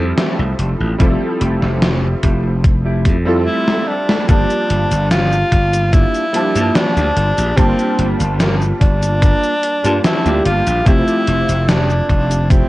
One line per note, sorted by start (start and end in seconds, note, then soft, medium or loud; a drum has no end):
0.00 0.12 F2 medium
0.00 0.96 F3 medium
0.00 0.94 G3 medium
0.00 0.95 C4 medium
0.00 0.95 E4 medium
0.00 0.96 A4 medium
0.17 0.49 A3 medium
0.17 0.49 E4 medium
0.17 0.49 G4 medium
0.17 snare loud
0.17 closed hi-hat medium
0.39 0.53 C2 medium
0.59 0.74 F1 medium
0.59 closed hi-hat medium
0.80 0.94 A1 medium
0.80 muted clean electric guitar stroke soft
0.98 1.15 F1 medium
0.98 3.22 F3 medium
0.98 3.21 G3 medium
0.98 1.21 A3 loud
0.98 3.21 C4 medium
0.98 1.21 E4 loud
0.98 3.22 E4 medium
0.98 1.21 G4 loud
0.98 3.22 A4 loud
0.98 kick loud
0.98 closed hi-hat medium
1.40 1.56 F1 medium
1.40 1.82 A3 medium
1.40 1.82 E4 medium
1.40 1.82 G4 loud
1.40 closed hi-hat medium
1.62 2.14 F1 medium
1.62 snare soft
1.82 snare loud
1.82 closed hi-hat medium
2.23 3.07 F1 medium
2.23 2.54 A3 medium
2.23 2.54 E4 medium
2.23 2.54 G4 loud
2.23 kick medium
2.23 closed hi-hat medium
2.64 kick loud
2.64 closed hi-hat medium
2.85 3.16 A3 loud
2.85 3.16 E4 loud
2.85 3.16 G4 loud
3.05 3.47 F2 medium
3.05 kick medium
3.05 closed hi-hat medium
3.26 3.46 G3 medium
3.26 3.46 C4 medium
3.26 3.47 E4 medium
3.26 3.47 F4 medium
3.26 3.47 A4 loud
3.46 3.77 A3 medium
3.46 3.78 E4 medium
3.46 3.89 E4 loud
3.46 3.78 G4 medium
3.68 snare medium
3.88 4.28 D4 loud
4.09 snare medium
4.27 4.44 G1 medium
4.27 6.30 F3 medium
4.27 6.29 G3 medium
4.27 6.29 A#3 medium
4.27 4.91 A#3 loud
4.27 5.07 D4 loud
4.27 6.29 D4 medium
4.27 4.91 D4 loud
4.27 4.91 F4 loud
4.27 4.91 G4 loud
4.27 6.30 A5 medium
4.27 kick loud
4.27 closed hi-hat medium
4.27 cabasa soft
4.50 closed hi-hat soft
4.50 cabasa soft
4.70 4.85 G1 medium
4.70 closed hi-hat medium
4.91 5.43 G1 medium
4.91 closed hi-hat medium
4.91 cabasa medium
5.11 5.95 F4 loud
5.11 snare loud
5.11 closed hi-hat medium
5.11 cabasa soft
5.32 cabasa soft
5.52 6.04 G1 medium
5.52 muted clean electric guitar stroke soft
5.52 kick medium
5.52 closed hi-hat medium
5.73 muted clean electric guitar stroke medium
5.73 closed hi-hat medium
5.73 cabasa medium
5.93 6.24 A#3 medium
5.93 6.24 D4 medium
5.93 6.77 E4 loud
5.93 6.25 F4 medium
5.93 6.25 G4 medium
5.93 kick loud
5.93 closed hi-hat medium
5.93 cabasa soft
6.15 closed hi-hat soft
6.15 cabasa soft
6.33 7.53 F3 medium
6.33 7.52 G3 medium
6.33 7.53 A#3 medium
6.33 7.53 D4 medium
6.33 7.54 A5 medium
6.33 closed hi-hat medium
6.55 6.69 G2 medium
6.55 7.06 A#3 medium
6.55 7.06 D4 medium
6.55 7.07 F4 medium
6.55 7.07 G4 loud
6.55 closed hi-hat medium
6.55 cabasa medium
6.75 7.59 D4 loud
6.75 snare loud
6.75 closed hi-hat medium
6.75 cabasa soft
6.97 7.11 D2 medium
6.97 closed hi-hat soft
6.97 cabasa soft
7.16 7.31 G1 medium
7.16 closed hi-hat medium
7.38 7.52 A#1 medium
7.38 closed hi-hat medium
7.38 cabasa medium
7.56 7.72 G1 medium
7.56 9.79 G3 medium
7.56 9.79 A#3 medium
7.56 8.20 A#3 loud
7.56 8.13 C4 loud
7.56 9.79 D4 medium
7.56 8.20 D4 loud
7.56 8.20 F4 loud
7.56 9.80 F4 medium
7.56 8.20 G4 loud
7.56 9.80 A5 loud
7.56 kick loud
7.56 closed hi-hat medium
7.56 cabasa soft
7.79 closed hi-hat soft
7.79 cabasa soft
7.99 8.14 G1 medium
7.99 closed hi-hat medium
8.20 8.71 G1 medium
8.20 closed hi-hat medium
8.20 cabasa medium
8.40 8.56 A#3 medium
8.40 snare loud
8.40 closed hi-hat medium
8.40 cabasa soft
8.61 cabasa soft
8.81 9.33 G1 medium
8.81 10.00 D4 loud
8.81 kick loud
8.81 closed hi-hat medium
9.02 muted clean electric guitar stroke medium
9.02 closed hi-hat medium
9.02 cabasa medium
9.21 9.53 A#3 medium
9.21 9.53 D4 medium
9.21 9.53 F4 medium
9.21 9.53 A#4 medium
9.21 kick loud
9.21 closed hi-hat medium
9.21 cabasa soft
9.43 closed hi-hat soft
9.43 cabasa soft
9.63 closed hi-hat medium
9.84 9.98 G2 medium
9.84 10.20 G3 medium
9.84 10.35 A#3 medium
9.84 10.20 A#3 medium
9.84 10.20 D4 medium
9.84 10.35 D4 medium
9.84 10.35 F4 medium
9.84 10.20 F4 medium
9.84 10.35 G4 loud
9.84 10.21 A5 medium
9.84 closed hi-hat medium
9.84 cabasa medium
10.04 10.42 E4 loud
10.04 snare loud
10.04 closed hi-hat medium
10.04 cabasa soft
10.25 10.39 D2 medium
10.25 10.46 G3 medium
10.25 10.46 A#3 medium
10.25 10.46 D4 medium
10.25 10.46 F4 medium
10.25 10.46 G4 medium
10.25 closed hi-hat soft
10.25 cabasa soft
10.45 10.60 G1 medium
10.45 10.88 F4 loud
10.45 closed hi-hat medium
10.67 10.80 A#1 medium
10.67 closed hi-hat medium
10.67 cabasa medium
10.85 11.01 F1 medium
10.85 12.69 F3 medium
10.85 12.69 A3 medium
10.85 11.49 A3 loud
10.85 12.69 C4 medium
10.85 11.70 E4 loud
10.85 11.49 E4 loud
10.85 11.49 F4 loud
10.85 11.49 G4 loud
10.85 12.69 G4 medium
10.85 12.69 E5 medium
10.85 kick loud
10.85 closed hi-hat medium
10.85 cabasa soft
11.08 closed hi-hat soft
11.08 cabasa soft
11.27 11.42 F1 medium
11.27 closed hi-hat medium
11.49 12.00 F1 medium
11.49 closed hi-hat medium
11.49 cabasa medium
11.68 12.50 D4 loud
11.68 snare loud
11.68 closed hi-hat medium
11.68 cabasa soft
11.90 cabasa soft
12.09 12.62 F1 medium
12.09 muted clean electric guitar stroke soft
12.09 kick medium
12.09 closed hi-hat medium
12.31 muted clean electric guitar stroke medium
12.31 closed hi-hat medium
12.31 cabasa medium
12.50 12.69 A3 medium
12.50 12.69 C4 loud
12.50 12.69 E4 medium
12.50 12.69 F4 medium
12.50 12.69 G4 loud
12.50 kick loud
12.50 closed hi-hat medium
12.50 cabasa soft